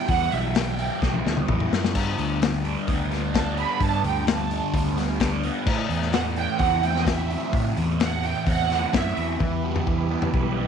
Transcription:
Already playing: distorted electric guitar G3 B3 E4
0.08 fingered electric bass E2, distorted electric guitar E3, string section F#5, kick, open hi-hat
0.32 fingered electric bass B1, distorted electric guitar G3, string section E5, open hi-hat
0.55 distorted electric guitar G3, string section G5, snare, open hi-hat
0.79 distorted electric guitar E4, open hi-hat
1.02 fingered electric bass B1, distorted electric guitar B3, kick, snare
1.14 high tom
1.26 fingered electric bass D2, distorted electric guitar G3, snare
1.37 mid tom
1.48 fingered electric bass E2, distorted electric guitar E4, kick, mid tom
1.60 mid tom
1.72 fingered electric bass F#2, distorted electric guitar B3, snare
1.84 snare
1.95 fingered electric bass G2, distorted electric guitar G2, kick, open hi-hat, crash
2.18 fingered electric bass D2, distorted electric guitar D3, open hi-hat
2.41 distorted electric guitar G3, snare, open hi-hat
2.65 distorted electric guitar D4, open hi-hat
2.87 fingered electric bass D2, distorted electric guitar B3, kick, open hi-hat
3.11 distorted electric guitar G3, snare, open hi-hat
3.34 distorted electric guitar D4, string section A5, kick, snare, open hi-hat
3.57 distorted electric guitar B3, string section B5, open hi-hat
3.80 distorted electric guitar G2, fingered electric bass G2, kick, open hi-hat
3.84 string section A5
4.03 fingered electric bass D2, distorted electric guitar D3, string section G5, open hi-hat
4.27 distorted electric guitar G3, string section A5, snare, open hi-hat
4.51 distorted electric guitar D4, open hi-hat
4.73 fingered electric bass D2, distorted electric guitar B3, kick, open hi-hat
4.97 distorted electric guitar G3, snare, open hi-hat
5.20 distorted electric guitar D4, kick, snare, open hi-hat
5.43 distorted electric guitar B3, open hi-hat
5.66 fingered electric bass A2, distorted electric guitar A2, kick, crash
5.89 fingered electric bass E2, distorted electric guitar E3, open hi-hat
6.02 snare
6.13 distorted electric guitar A3, string section F#5, snare, open hi-hat
6.36 distorted electric guitar E4, string section G5, open hi-hat
6.59 fingered electric bass E2, distorted electric guitar C4, string section F#5, kick, open hi-hat
6.83 distorted electric guitar A3, string section G5, open hi-hat
6.97 string section D#5, snare
7.06 distorted electric guitar E4, string section E5, kick, snare, open hi-hat
7.30 distorted electric guitar C4, open hi-hat
7.53 fingered electric bass A2, distorted electric guitar A2, kick, open hi-hat
7.77 fingered electric bass E2, distorted electric guitar E3, open hi-hat
8.00 distorted electric guitar A3, string section F#5, snare, open hi-hat
8.23 distorted electric guitar E4, string section G5, open hi-hat
8.46 fingered electric bass E2, distorted electric guitar C4, string section F#5, kick, open hi-hat
8.70 distorted electric guitar A3, snare, open hi-hat
8.93 fingered electric bass F#2, distorted electric guitar E4, string section E5, kick, snare, open hi-hat
9.17 fingered electric bass E2, distorted electric guitar C4, open hi-hat
9.40 fingered electric bass E2, distorted electric guitar E3, string section B3 E4 G4 B4, kick, floor tom
9.64 distorted electric guitar G3
9.76 floor tom
9.87 distorted electric guitar E3, kick
10.11 distorted electric guitar B3
10.22 floor tom
10.34 fingered electric bass B1, distorted electric guitar G3, kick
10.58 distorted electric guitar B3

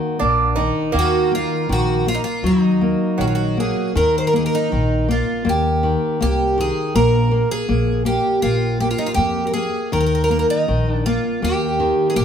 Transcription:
Already playing: nylon-string guitar D#3 A#3, twelve-string acoustic guitar D#4 F#4
0.19 upright bass A#1, nylon-string guitar A#3, twelve-string acoustic guitar D4
0.56 nylon-string guitar D#3, twelve-string acoustic guitar D#4
0.92 upright bass D#2, nylon-string guitar D#3, twelve-string acoustic guitar A#3
0.99 twelve-string acoustic guitar F#4
1.31 nylon-string guitar A#3, twelve-string acoustic guitar F4
1.69 upright bass A#1, nylon-string guitar D#3, twelve-string acoustic guitar F#4
2.06 nylon-string guitar A#3, twelve-string acoustic guitar F4
2.15 twelve-string acoustic guitar D#4
2.24 twelve-string acoustic guitar F4
2.43 upright bass D#2, nylon-string guitar F#3, twelve-string acoustic guitar D#4
2.81 nylon-string guitar A#3
3.18 upright bass A#1, nylon-string guitar D#3, twelve-string acoustic guitar F#3 F#4
3.27 twelve-string acoustic guitar F4
3.35 twelve-string acoustic guitar F#4
3.57 nylon-string guitar A#3, twelve-string acoustic guitar G#4
3.95 upright bass D#2, nylon-string guitar D#3, twelve-string acoustic guitar A#4
4.18 twelve-string acoustic guitar C5
4.27 twelve-string acoustic guitar A#4
4.33 nylon-string guitar A#3, twelve-string acoustic guitar G#4
4.46 twelve-string acoustic guitar A#4
4.55 twelve-string acoustic guitar D#4
4.72 upright bass A#1, nylon-string guitar D#3
5.08 nylon-string guitar A#3, twelve-string acoustic guitar F4
5.45 upright bass D#2, nylon-string guitar A#3
5.49 twelve-string acoustic guitar G4
5.83 nylon-string guitar D#3
6.21 upright bass C2, nylon-string guitar A#3, twelve-string acoustic guitar G4
6.58 nylon-string guitar D#3, twelve-string acoustic guitar G#4
6.95 upright bass A#1, nylon-string guitar A#3, twelve-string acoustic guitar A#4
7.31 nylon-string guitar A#3
7.51 twelve-string acoustic guitar G#4
7.69 upright bass A#1, nylon-string guitar A#3
8.05 nylon-string guitar A#3, twelve-string acoustic guitar G4
8.42 upright bass A#1, nylon-string guitar A#3, twelve-string acoustic guitar F4
8.80 nylon-string guitar A#3, twelve-string acoustic guitar G4
8.91 twelve-string acoustic guitar F4
8.98 twelve-string acoustic guitar D#4
9.06 twelve-string acoustic guitar F4
9.14 upright bass F2, nylon-string guitar A#3, twelve-string acoustic guitar G4
9.47 twelve-string acoustic guitar A#4
9.53 nylon-string guitar A#3, twelve-string acoustic guitar G#4
9.92 upright bass D#2, nylon-string guitar D#3, twelve-string acoustic guitar A#4
10.00 twelve-string acoustic guitar A#4
10.06 twelve-string acoustic guitar A#4
10.15 twelve-string acoustic guitar A#4
10.24 twelve-string acoustic guitar A#4
10.30 nylon-string guitar A#3, twelve-string acoustic guitar A#4
10.39 twelve-string acoustic guitar A#4
10.50 twelve-string acoustic guitar D#4
10.68 upright bass A#1, nylon-string guitar D#3
10.91 twelve-string acoustic guitar D4
11.06 nylon-string guitar A#3, twelve-string acoustic guitar F4
11.42 upright bass D#2, nylon-string guitar A#3, twelve-string acoustic guitar G4
11.80 nylon-string guitar D#3
12.10 twelve-string acoustic guitar G#4
12.16 upright bass A#1, nylon-string guitar A#3, twelve-string acoustic guitar G4

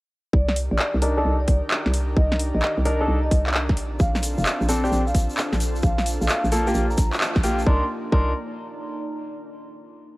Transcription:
0.33 fm bass C2, ambient pad D#3, analog synth pad D4 D#4 G4 A#4, vibraphone D5, kick
0.48 snare
0.56 ambient pad D5, open hi-hat
0.71 fm bass A#1, vibraphone D5
0.79 clap
0.94 fm bass C2
1.02 grand piano D4 D#4 A#4, open hi-hat
1.17 grand piano D4 D#4 A4
1.22 fm bass C2, ambient pad A#5
1.40 vibraphone D5
1.48 fm bass C2, kick, open hi-hat
1.71 clap
1.86 fm bass C2, snare
1.94 open hi-hat
2.16 fm bass C2, vibraphone D#5, kick
2.32 snare
2.39 open hi-hat
2.55 fm bass A#1, vibraphone D#5
2.62 clap
2.78 fm bass C2
2.85 grand piano D4 D#4 A#4, open hi-hat
3.01 grand piano D4 D#4 A4
3.08 fm bass C2
3.23 vibraphone D#5
3.31 fm bass C2, kick, open hi-hat
3.46 clap
3.54 clap
3.69 fm bass A#1, kick, snare
3.77 analog synth pad C4 F4 A4, ambient pad D4, open hi-hat
4.00 fm bass A#1, vibraphone F5, kick, shaker
4.15 snare, shaker
4.23 open hi-hat, shaker
4.27 ambient pad A5
4.38 fm bass F1, ambient pad C5, vibraphone F5, shaker
4.45 clap, shaker
4.61 fm bass A#1, shaker
4.69 grand piano C4 D4 A4, open hi-hat, shaker
4.84 grand piano C4 D4 G4, shaker
4.92 fm bass A#1, shaker
5.07 vibraphone F5, shaker
5.14 fm bass A#1, kick, open hi-hat, shaker
5.30 shaker
5.37 clap, shaker
5.52 fm bass A#1, snare, shaker
5.60 open hi-hat, shaker
5.75 shaker
5.83 fm bass A#1, analog synth pad A#3 D4, ambient pad F4, vibraphone F5, kick, shaker
5.98 snare, shaker
6.06 open hi-hat, shaker
6.15 ambient pad A#3
6.21 fm bass A#1, vibraphone F5, shaker
6.29 clap, shaker
6.44 fm bass A#1, shaker
6.52 grand piano A#3 F4 A4, open hi-hat, shaker
6.67 grand piano A#3 F4 G4, shaker
6.74 fm bass A#1, shaker
6.90 vibraphone A#5, shaker
6.98 fm bass A#1, kick, open hi-hat, shaker
7.13 clap, shaker
7.21 clap, shaker
7.36 fm bass A#1, kick, snare, shaker
7.43 grand piano A#3 F4 G4, open hi-hat, shaker
7.59 shaker
7.66 fm bass C2, grand piano D4 D#4 A#4, ambient pad D#4, vibraphone C6, kick
7.76 ambient pad D5
7.83 ambient pad A#5
8.12 fm bass C2, grand piano D4 D#4 A#4, vibraphone C6, kick

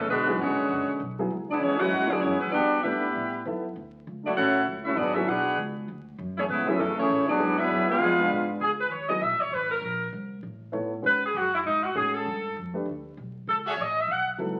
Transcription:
0.00 saxophone section E3 C#4 A4
0.08 upright bass E1, trombone section D3 G#3 B3, saxophone section G#3 D4 F#4 B4
0.27 upright piano F#3 B3 E4 G#4
0.39 upright bass G#1, trombone section D3 G#3 C#4, saxophone section B3 F#4 G#4 C#5
0.57 muted upright bass stroke
0.69 upright bass F#1
0.88 muted upright bass stroke
1.00 upright bass B1
1.19 upright piano F#3 B3 E4 G#4
1.30 upright bass C#2
1.50 saxophone section B3 E4 G#4 D5, trombone section D4
1.60 upright bass E2, trombone section E3 G#3 C#4, saxophone section B3 E4 G#4 C#5
1.78 upright piano F#3 B3, trombone section G#3 C#4 F#4, saxophone section E4 B4 C#5 F#5
1.82 upright piano E4 G#4
1.92 upright bass G#2
2.10 upright piano F#3 B3 E4 G#4, saxophone section B3 E4 G#4 D5, trombone section D4, muted upright bass stroke
2.20 upright bass F#2, trombone section E3 G#3 C#4, saxophone section B3 E4 G#4 C#5
2.39 trombone section E3 G#3 B3, saxophone section G#3 C#4 E4 B4, muted upright bass stroke
2.51 upright bass E2, trombone section G3 B3 D4, saxophone section B3 F#4 G4 D5
2.83 upright bass G2, trombone section G3 B3 E4, upright piano A3 D4 G4 B4, saxophone section D4 G4 B4 E5
3.15 upright bass A2
3.45 upright bass F#2, upright piano B3 E4 A4 E5
3.76 upright bass D2
4.07 upright bass C#2
4.24 trombone section F#3 A3 D4, saxophone section A3 E4 F#4 D5
4.35 upright bass A1, trombone section A3 C#4 F#4, saxophone section E4 A4 C#5 F#5
4.67 upright bass C#2
4.84 trombone section A3 C#4 E4, saxophone section C#4 F#4 A4 E5
4.95 upright bass G#1, trombone section F#3 B3 D4, saxophone section B3 F#4 G#4 D5
5.14 upright piano F#3 B3 E4 G#4, saxophone section C#4 F#4 A4 E5, trombone section E4
5.27 upright bass B1, trombone section B3 D4 F#4, saxophone section D4 G#4 B4 F#5
5.58 upright bass C#2
5.88 upright bass D2
6.18 upright bass F#2
6.37 trombone section E3 A3 C#4, saxophone section A3 E4 G#4 C#5
6.49 upright bass G#2, trombone section C#3 E3 B3, saxophone section A3 E4 G#4 B4
6.67 upright piano F#3 B3 E4 G#4, trombone section A3 C#4 E4, saxophone section C#4 G#4 A4 E5, muted upright bass stroke
6.78 upright bass F#2, trombone section C#3 E3 A3, saxophone section E3 G#3 C#4 A4
6.97 trombone section E3 A3 C#4, saxophone section A3 E4 G#4 C#5
7.10 upright bass A2
7.28 trombone section F#3 B3 D4, saxophone section B3 F#4 G#4 D5, muted upright bass stroke
7.39 upright bass G#2, upright piano F#3 B3 E4 G#4
7.59 trombone section F#3 B3 E4, saxophone section D4 G#4 B4 E5
7.70 upright bass F#2
7.89 trombone section G#3 B3 F4, saxophone section D4 G#4 B4 F5
8.00 upright bass F2
8.18 upright piano G#3 B3 D4 F4
8.31 upright bass G#2
8.60 upright bass C#2, saxophone section G#4
8.81 saxophone section B4
8.89 upright bass D#2, saxophone section B4 C#5
9.09 upright piano F#3 B3 E4 G#4, saxophone section D#5
9.22 upright bass B1, saxophone section E5
9.31 upright bass G#1
9.41 upright bass E1, saxophone section C#5
9.51 upright bass G#1, saxophone section B4
9.72 saxophone section A#4
9.82 upright bass A#1
10.13 upright bass C2
10.43 upright bass A1
10.72 upright bass A2, upright piano B3 E4 A4 C#5
11.02 upright bass G#2, upright piano G#3 C#4 F#4 B4
11.07 saxophone section B4
11.26 saxophone section G#4
11.34 upright bass F#2, saxophone section F#4
11.55 saxophone section E4
11.64 upright bass G#2, saxophone section D#4
11.84 saxophone section F#4
11.95 upright bass A2, upright piano G#3 C#4 F#4 G#4, saxophone section G#4
12.15 saxophone section A4
12.26 upright bass G2
12.56 upright bass F2
12.74 upright piano A3 D4 G4 B4
12.86 upright bass D2
13.17 upright bass B1
13.47 upright bass C#2, saxophone section A4
13.66 trumpet section F#4 G#4 A4 E5, saxophone section C#5
13.78 upright bass A1
13.82 saxophone section D#5
14.01 saxophone section E5
14.08 upright bass B1, saxophone section F#5
14.38 upright bass C#2, upright piano F#3 B3 E4 A4

